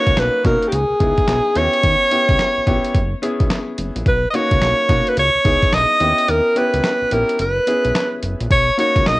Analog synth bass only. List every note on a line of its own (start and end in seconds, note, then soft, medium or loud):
0.07 0.14 C#2 medium
0.17 0.30 B1 loud
0.45 0.57 B2 medium
0.72 0.85 C#2 loud
0.90 0.94 C#2 soft
1.00 1.13 C#2 medium
1.28 1.41 B1 medium
1.56 1.69 D#2 loud
1.84 1.96 D#2 loud
2.29 2.36 C#2 medium
2.57 2.61 A#1 soft
2.67 2.80 A#1 medium
2.94 3.15 F#1 loud
3.40 3.48 B1 medium
3.78 3.91 F#1 medium
3.96 4.03 A#1 medium
4.06 4.26 B1 loud
4.51 4.59 C#2 medium
4.62 4.74 B1 loud
4.89 5.02 B2 loud
5.17 5.30 C#2 loud
5.35 5.39 C#2 soft
5.45 5.58 C#2 medium
5.73 5.86 B1 loud
6.01 6.13 D#2 medium
6.29 6.41 D#2 loud
6.74 6.81 C#2 medium
7.02 7.06 A#1 soft
7.12 7.24 A#1 medium
7.39 7.59 F#1 loud
7.85 7.92 B1 medium
8.23 8.35 F#1 medium
8.41 8.48 A#1 medium
8.51 8.71 B1 loud
8.96 9.03 C#2 medium
9.06 9.19 B1 medium